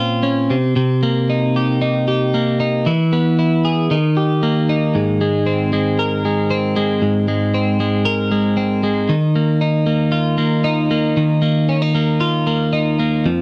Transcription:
0.00 0.50 A#2 medium
0.00 1.06 C4 medium
0.00 0.22 C#4 medium
0.00 0.55 F4 medium
0.23 0.55 C#4 medium
0.50 0.75 C3 medium
0.76 2.85 C3 medium
1.03 2.33 A#3 medium
1.30 1.80 D#4 medium
1.56 2.07 G4 medium
1.82 2.59 D#4 medium
2.08 2.91 G4 medium
2.34 2.91 A#3 medium
2.60 2.91 D#4 medium
2.86 3.90 E3 medium
3.13 3.96 B3 medium
3.39 3.96 E4 medium
3.65 3.95 G#4 medium
3.91 7.41 D#3 medium
4.17 5.24 G4 medium
4.43 5.21 A#3 medium
4.69 5.46 D#4 medium
4.95 7.01 G#2 medium
5.21 5.72 G#3 medium
5.46 6.49 C4 medium
5.73 6.24 G#3 medium
5.99 8.05 A#4 medium
6.25 6.75 G#3 medium
6.51 7.53 C4 medium
6.76 7.27 G#3 medium
7.02 9.10 G#2 medium
7.28 7.79 G#3 medium
7.54 8.56 C4 medium
7.80 8.30 G#3 medium
8.05 10.11 A#4 medium
8.31 8.82 G#3 medium
8.57 9.14 C4 medium
8.83 9.15 G#3 medium
9.09 11.16 D#3 medium
9.36 9.85 A#3 medium
9.61 10.63 D#4 medium
9.86 10.37 A#3 medium
10.12 12.20 F4 medium
10.38 10.90 A#3 medium
10.64 11.69 D#4 medium
10.91 11.41 A#3 medium
11.17 13.24 D#3 medium
11.42 11.94 A#3 medium
11.69 11.82 C#4 medium
11.82 12.72 D#4 medium
11.95 12.46 A#3 medium
12.21 13.42 F4 medium
12.47 12.98 A#3 medium
12.73 13.30 D#4 medium
12.99 13.30 A#3 medium
13.26 13.42 F2 medium

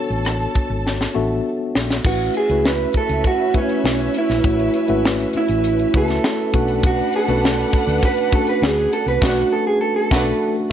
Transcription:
0.00 1.15 B3 medium
0.00 1.15 D4 medium
0.00 1.15 F#4 medium
0.00 1.16 A4 medium
0.00 1.41 A4 medium
0.00 2.07 B4 medium
0.00 0.77 C#5 medium
0.00 1.41 A5 loud
0.10 0.45 A1 medium
0.25 cross-stick medium
0.25 closed hi-hat medium
0.55 muted fingered electric bass stroke soft
0.55 kick medium
0.55 closed hi-hat soft
0.70 1.05 G#1 medium
0.87 snare soft
1.01 snare soft
1.15 1.39 A1 medium
1.15 1.98 B3 medium
1.15 1.98 D4 medium
1.15 1.98 F#4 medium
1.15 1.98 A4 medium
1.15 1.98 E5 medium
1.75 1.98 A#1 medium
1.75 snare loud
1.90 snare medium
2.04 2.28 A1 loud
2.04 2.47 A3 medium
2.04 6.49 C#4 medium
2.04 2.47 C#4 medium
2.04 2.47 E4 medium
2.04 2.47 F#4 medium
2.04 2.37 F#4 medium
2.04 6.49 B4 medium
2.04 2.47 B4 medium
2.04 6.49 E5 medium
2.04 kick loud
2.04 crash medium
2.34 2.67 G#4 medium
2.34 closed hi-hat medium
2.49 2.85 C#2 medium
2.49 3.47 A3 medium
2.49 3.47 C#4 medium
2.49 3.47 E4 medium
2.49 3.47 F#4 medium
2.49 3.47 B4 medium
2.49 closed hi-hat soft
2.65 2.94 B4 medium
2.65 snare medium
2.93 muted fingered electric bass stroke soft
2.93 kick medium
2.93 closed hi-hat medium
2.97 3.27 A4 medium
3.09 3.21 C#2 medium
3.09 closed hi-hat medium
3.24 3.54 F#4 medium
3.24 kick medium
3.24 closed hi-hat medium
3.54 4.37 A3 medium
3.54 4.38 C#4 medium
3.54 4.38 E4 medium
3.54 4.38 F#4 medium
3.54 4.38 B4 medium
3.54 kick medium
3.54 closed hi-hat medium
3.58 4.12 C#4 medium
3.69 closed hi-hat soft
3.84 4.08 B1 medium
3.84 snare medium
4.01 closed hi-hat soft
4.14 closed hi-hat medium
4.18 5.02 E4 medium
4.29 4.41 A#1 medium
4.29 snare soft
4.29 closed hi-hat soft
4.44 4.68 A1 medium
4.44 4.86 A3 medium
4.44 4.86 C#4 medium
4.44 4.86 E4 medium
4.44 4.86 F#4 medium
4.44 4.86 C#5 medium
4.44 kick loud
4.44 closed hi-hat medium
4.59 closed hi-hat soft
4.74 closed hi-hat medium
4.88 5.24 G#1 medium
4.88 5.85 A3 medium
4.88 5.85 C#4 medium
4.88 5.85 E4 medium
4.88 5.86 F#4 medium
4.88 5.86 B4 medium
4.88 closed hi-hat soft
5.05 snare medium
5.20 closed hi-hat soft
5.33 muted fingered electric bass stroke soft
5.33 closed hi-hat medium
5.37 5.97 E4 medium
5.48 5.84 A1 medium
5.48 closed hi-hat medium
5.64 closed hi-hat medium
5.79 closed hi-hat soft
5.94 6.18 C#2 medium
5.94 6.52 A3 medium
5.94 6.53 C#4 medium
5.94 6.54 E4 medium
5.94 6.54 F#4 medium
5.94 6.81 A4 loud
5.94 6.54 B4 medium
5.94 kick loud
5.94 closed hi-hat medium
6.08 snare soft
6.08 closed hi-hat soft
6.24 snare loud
6.40 closed hi-hat soft
6.54 7.00 B1 medium
6.54 7.22 A3 medium
6.54 7.23 C#4 medium
6.54 9.18 D4 medium
6.54 7.23 D4 medium
6.54 7.23 F#4 medium
6.54 9.18 B4 medium
6.54 7.23 B4 medium
6.54 9.19 F#5 medium
6.54 kick medium
6.54 closed hi-hat medium
6.68 closed hi-hat soft
6.83 7.16 F#4 medium
6.83 kick loud
6.83 closed hi-hat loud
6.99 closed hi-hat soft
7.13 8.05 A4 loud
7.13 closed hi-hat medium
7.28 7.63 B1 loud
7.28 8.25 A3 medium
7.28 8.25 C#4 medium
7.28 8.25 D4 medium
7.28 8.25 F#4 medium
7.28 8.26 B4 medium
7.28 closed hi-hat soft
7.45 snare medium
7.73 muted fingered electric bass stroke soft
7.73 kick medium
7.73 closed hi-hat medium
7.87 7.99 D2 medium
7.87 closed hi-hat medium
8.03 8.32 B4 loud
8.03 kick medium
8.03 closed hi-hat medium
8.18 closed hi-hat soft
8.31 9.15 A3 medium
8.31 9.15 C#4 medium
8.31 9.15 D4 medium
8.31 9.15 F#4 medium
8.31 8.49 A4 loud
8.31 9.15 B4 medium
8.31 kick medium
8.31 closed hi-hat medium
8.47 8.65 B4 medium
8.47 closed hi-hat soft
8.62 8.86 D2 loud
8.62 8.93 G#4 loud
8.62 snare loud
8.79 closed hi-hat soft
8.93 9.08 A4 medium
8.93 closed hi-hat medium
9.06 9.18 C2 medium
9.06 9.22 B4 loud
9.06 closed hi-hat soft
9.21 9.42 B1 medium
9.21 9.42 A3 medium
9.21 9.42 D4 medium
9.21 9.43 F#4 loud
9.21 9.53 F#4 medium
9.21 9.42 B4 medium
9.21 9.43 B4 loud
9.21 9.42 F#5 medium
9.21 kick loud
9.21 snare loud
9.21 crash medium
9.52 9.67 A4 medium
9.67 9.81 G#4 medium
9.81 9.95 A4 medium
9.96 10.52 A4 medium
10.11 10.32 B1 medium
10.11 10.32 A3 loud
10.11 10.32 D4 loud
10.11 10.33 D4 loud
10.11 10.32 F#4 loud
10.11 10.33 B4 loud
10.11 10.32 F#5 medium
10.11 kick loud
10.11 snare loud

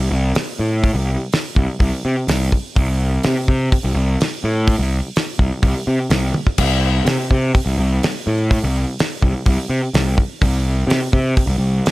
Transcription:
0.11 0.32 C2 medium
0.35 snare loud
0.35 open hi-hat medium
0.59 0.90 A2 medium
0.84 kick loud
0.84 open hi-hat soft
0.94 1.15 C2 medium
1.32 snare medium
1.32 open hi-hat soft
1.56 1.66 C2 medium
1.56 kick medium
1.80 1.90 C2 loud
1.80 kick loud
1.80 open hi-hat soft
2.05 2.15 C3 medium
2.28 2.48 C2 medium
2.28 snare loud
2.28 open hi-hat medium
2.52 kick medium
2.76 3.17 C2 loud
2.76 kick loud
2.76 open hi-hat medium
3.23 3.35 C3 medium
3.23 snare loud
3.23 open hi-hat medium
3.48 3.68 C3 medium
3.48 kick medium
3.72 kick loud
3.72 open hi-hat medium
3.84 3.94 C2 medium
3.95 4.15 C2 medium
4.20 snare loud
4.20 open hi-hat medium
4.44 4.74 A2 medium
4.67 kick loud
4.67 open hi-hat medium
4.79 5.00 C2 medium
5.16 snare loud
5.16 open hi-hat soft
5.39 5.49 C2 medium
5.39 kick medium
5.63 5.73 C2 loud
5.63 kick loud
5.63 open hi-hat medium
5.87 5.97 C3 medium
6.10 6.31 C2 medium
6.10 snare loud
6.10 open hi-hat medium
6.34 high tom medium
6.47 kick medium
6.58 7.00 C2 loud
6.58 kick loud
6.58 open hi-hat medium
6.58 crash medium
7.05 7.16 C3 medium
7.05 snare loud
7.05 open hi-hat medium
7.31 7.51 C3 medium
7.31 kick medium
7.55 kick loud
7.55 open hi-hat medium
7.66 7.76 C2 medium
7.78 7.98 C2 medium
8.03 snare loud
8.03 open hi-hat medium
8.27 8.57 A2 medium
8.51 kick loud
8.51 open hi-hat medium
8.64 8.83 C2 medium
8.99 snare loud
8.99 open hi-hat soft
9.22 9.32 C2 medium
9.22 kick medium
9.46 9.56 C2 loud
9.46 kick loud
9.46 open hi-hat medium
9.69 9.80 C3 medium
9.94 10.14 C2 medium
9.94 snare loud
9.94 open hi-hat medium
10.18 kick medium
10.42 10.83 C2 medium
10.42 kick loud
10.42 open hi-hat soft
10.87 10.98 C3 medium
10.87 snare loud
10.87 open hi-hat medium
11.13 11.34 C3 medium
11.13 kick medium
11.37 kick loud
11.37 open hi-hat medium
11.47 11.58 C2 medium
11.58 11.80 C2 medium
11.86 snare loud
11.86 open hi-hat medium

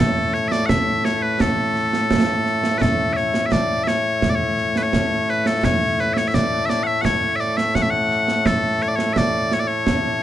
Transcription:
0.00 10.23 A2 medium
0.00 10.23 A3 medium
0.00 0.34 A4 medium
0.34 0.48 C#5 medium
0.34 snare soft
0.48 0.66 D5 loud
0.48 0.52 E5 loud
0.48 snare medium
0.66 1.05 E5 loud
0.66 0.69 F#5 loud
0.66 concert bass drum medium
0.66 snare loud
1.05 1.22 C#5 medium
1.05 snare medium
1.22 1.41 B4 medium
1.40 2.78 A4 medium
1.40 concert bass drum medium
1.40 snare loud
1.75 snare soft
1.93 snare medium
2.11 concert bass drum medium
2.11 snare loud
2.46 snare soft
2.64 snare medium
2.78 3.13 A4 medium
2.78 2.81 B4 medium
2.78 concert bass drum medium
2.78 snare medium
3.13 3.46 C#5 medium
3.13 3.17 E5 medium
3.13 snare soft
3.34 snare medium
3.46 3.52 E5 medium
3.52 3.84 D5 medium
3.52 concert bass drum medium
3.52 snare medium
3.84 3.88 E5 medium
3.84 snare medium
3.88 4.30 C#5 medium
4.22 concert bass drum medium
4.22 snare medium
4.30 4.35 D5 medium
4.35 4.78 C#5 medium
4.58 snare soft
4.76 4.83 B4 medium
4.76 snare medium
4.83 5.30 C#5 medium
4.93 concert bass drum medium
4.93 snare medium
5.28 5.47 B4 medium
5.28 snare soft
5.46 5.65 A4 medium
5.46 snare medium
5.63 6.00 C#5 loud
5.63 concert bass drum medium
5.63 snare loud
5.99 6.14 B4 medium
5.99 snare soft
6.14 6.18 E5 medium
6.14 snare medium
6.18 6.28 C#5 medium
6.28 6.35 E5 medium
6.34 6.66 D5 loud
6.34 concert bass drum soft
6.34 snare medium
6.66 6.83 D5 medium
6.66 6.70 E5 medium
6.66 snare medium
6.83 7.01 E5 loud
6.83 6.87 F#5 loud
7.01 7.36 C#5 loud
7.01 7.05 F#5 loud
7.01 concert bass drum medium
7.01 snare medium
7.36 7.40 E5 medium
7.40 7.57 D5 medium
7.40 snare soft
7.57 7.75 E5 medium
7.57 snare medium
7.75 7.82 F#5 loud
7.75 concert bass drum medium
7.75 snare medium
7.82 7.90 E5 medium
7.90 8.46 F#5 loud
8.11 snare soft
8.28 snare medium
8.46 8.82 A4 medium
8.46 concert bass drum medium
8.46 snare medium
8.81 8.88 C#5 medium
8.81 snare soft
8.88 8.96 D5 medium
8.96 9.13 C#5 medium
8.96 snare medium
9.13 9.18 E5 medium
9.13 concert bass drum soft
9.13 snare medium
9.18 9.54 D5 medium
9.52 9.60 C#5 medium
9.52 snare medium
9.60 9.67 D5 medium
9.67 10.23 C#5 medium
9.87 concert bass drum medium
9.87 snare medium

